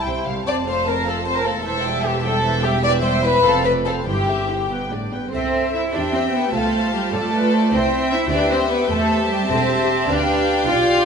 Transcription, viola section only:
0.05 0.25 G3 soft
0.05 0.25 C5 soft
0.26 0.47 G3 soft
0.26 0.45 C5 soft
0.46 0.66 C4 soft
0.46 0.66 C5 soft
0.66 0.87 A3 soft
0.66 0.87 A4 soft
0.86 1.07 C4 soft
0.86 1.07 C5 soft
1.06 1.27 A3 soft
1.06 1.27 A4 soft
1.27 1.45 C4 soft
1.27 1.45 C5 soft
1.47 1.66 A3 soft
1.47 1.66 A4 soft
1.65 1.84 E3 soft
1.65 1.84 C5 soft
1.86 2.06 G3 soft
1.86 2.06 E5 soft
2.05 2.25 E3 soft
2.05 2.25 C5 soft
2.25 2.45 G3 soft
2.25 2.44 E5 soft
2.43 2.62 E3 soft
2.43 2.62 C5 soft
2.64 2.84 G3 soft
2.64 2.84 E5 soft
2.83 3.02 E3 soft
2.83 3.02 C5 soft
3.03 3.23 G3 soft
3.03 3.24 E5 soft
3.23 3.44 E3 soft
3.23 3.42 C5 soft
3.44 3.63 C4 soft
3.44 3.63 C5 soft
3.64 3.85 A3 soft
3.64 3.85 A4 soft
3.85 4.06 C4 soft
3.85 4.05 C5 soft
4.06 4.26 E4 soft
4.06 4.26 C5 soft
4.27 4.49 C4 soft
4.27 4.49 G4 soft
4.49 4.70 E4 soft
4.49 4.70 C5 soft
4.70 4.90 B3 soft
4.70 4.90 B4 soft
4.91 5.13 D4 soft
4.91 5.13 G4 soft
5.12 5.34 B3 soft
5.12 5.33 B4 soft
5.34 5.91 A4 soft
5.34 6.50 C5 soft
5.95 6.54 G4 soft
6.53 7.72 F4 soft
6.53 7.12 C5 soft
7.13 7.32 A4 soft
7.33 7.52 B4 soft
7.52 7.70 C5 soft
7.72 8.30 E4 soft
7.72 8.29 C5 soft
8.31 8.89 G4 soft
8.31 8.90 B4 soft
8.89 9.49 G4 soft
8.89 9.50 C5 soft
9.51 9.70 A4 soft
9.51 10.08 C5 soft
9.70 9.87 G4 medium
9.89 11.05 G4 soft
10.08 10.67 B4 soft
10.67 11.05 D5 soft

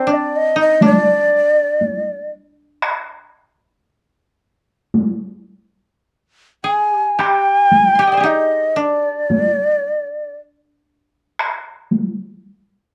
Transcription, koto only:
0.00 2.42 C4 medium
0.07 0.62 D4 medium
0.56 0.88 D#4 medium
0.82 3.25 D4 medium
6.64 6.93 G#4 medium
6.93 7.19 G4 medium
7.19 7.98 G4 medium
7.95 8.20 G4 medium
7.95 9.08 C6 soft
8.00 8.23 G5 soft
8.00 8.26 G#5 soft
8.07 8.82 D#5 soft
8.12 9.85 C5 soft
8.12 8.29 D5 soft
8.17 10.24 G4 soft
8.17 10.14 G#4 soft
8.23 8.82 D#4 medium
8.76 11.19 D4 medium

